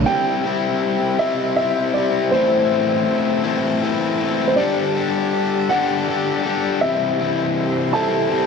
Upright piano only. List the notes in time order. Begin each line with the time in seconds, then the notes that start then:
0.06 G5
1.19 E5
1.56 E5
1.94 D5
2.31 C5
4.48 C5
4.56 D5
5.69 F#5
6.81 E5
7.93 A5